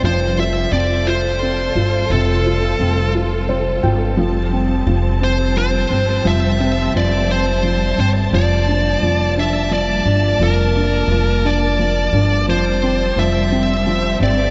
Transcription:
0.03 upright bass F1, felt piano F3, string section G3 F4 A4, lead electric guitar C5
0.38 felt piano F4, lead electric guitar E5
0.72 upright bass F1, felt piano C4, lead electric guitar D5
1.07 felt piano F4, lead electric guitar C5
1.42 felt piano C4
1.75 upright bass G1, felt piano F4
2.10 upright bass F1, felt piano C3, lead electric guitar A4
2.46 felt piano F4
2.80 upright bass F1, felt piano C4
3.14 felt piano F4
3.49 felt piano C4 C5
3.83 upright bass G1, felt piano F4 G5
4.17 upright bass F1, felt piano F3, string section C4 A5
4.53 felt piano C4
4.87 upright bass F1, felt piano F3
5.21 felt piano C4, lead electric guitar C5
5.56 felt piano F3, lead electric guitar C5
5.90 upright bass G1, felt piano C4
6.25 upright bass F1, felt piano F3, lead electric guitar E5
6.60 felt piano C4
6.94 upright bass F1, felt piano F3, lead electric guitar D5
7.29 felt piano C4, lead electric guitar C5
7.63 felt piano F3
7.98 upright bass G1, felt piano C4, lead electric guitar C5
8.32 upright bass F1, felt piano F3, string section A#3, lead electric guitar D5
8.67 felt piano D4
9.02 upright bass F1, felt piano F3
9.37 felt piano D4, lead electric guitar E5
9.71 felt piano F3, lead electric guitar D5
10.06 upright bass G1, felt piano D4
10.40 upright bass F1, felt piano F3, lead electric guitar A#4
10.76 felt piano D4
11.08 upright bass F1, felt piano F3
11.45 felt piano D4, lead electric guitar D5
11.79 felt piano F3
12.13 upright bass G1, felt piano D4
12.47 upright bass F1, felt piano F3, string section G3 C4, lead electric guitar C5
12.83 felt piano C4
13.16 upright bass F1, felt piano F3, lead electric guitar E5
13.52 felt piano C4
13.87 felt piano F3
14.20 upright bass G1, felt piano C4, lead electric guitar D5

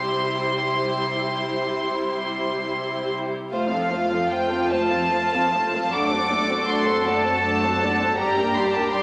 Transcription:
Already playing: cello section C3, viola section G3 E4, violin section G4 C5 C6
3.52 double bass section F2, viola section A3 F4, cello section F4, violin section C5 F5
3.72 viola section F3 C4, violin section A4 F5
3.91 viola section A3 F4, violin section C5
4.11 viola section F3 C4, violin section A4 F5
4.29 viola section A3 F4, violin section C5 G5
4.49 viola section F3 C4, violin section A4 F5
4.71 viola section A3 F4, violin section C5 A5
4.90 viola section F3 C4, violin section A4 F5
5.10 viola section A3 F4, violin section C5
5.31 violin section A4 F5
5.35 viola section F3 C4
5.53 viola section A3 F4, violin section C5
5.73 viola section F3 C4, violin section A4 F5
5.92 double bass section F#2, viola section A3 D4, violin section F#4 D5 D6, cello section A4
6.11 viola section C4 F#4, violin section A4 C5
6.30 viola section A3 D4, violin section F#4 D5
6.49 viola section C4 F#4, violin section A4 C5
6.67 viola section A3 D4, violin section F#4 D5 C6
6.86 viola section C4 F#4, violin section A4 C5
7.05 viola section A3 D4, violin section F#4 D5 A5
7.23 viola section C4 F#4, violin section A4 C5
7.43 viola section A3 D4, violin section F#4 D5
7.62 viola section C4 F#4, violin section A4 C5
7.81 viola section A3 D4, violin section F#4 D5
7.98 violin section A4 C5
8.03 viola section C4 F#4
8.18 double bass section G2, viola section G3 G4, cello section G4, violin section G4 D5 A#5
8.37 viola section A#3 D4, violin section A#4 G5
8.56 viola section G3 G4, violin section G4 D5 C6
8.65 violin section A#5
8.73 viola section A#3, violin section A#4 G5 A5
8.77 viola section D4
8.83 violin section A#5
8.92 viola section G3 G4, violin section G4 D5 C6

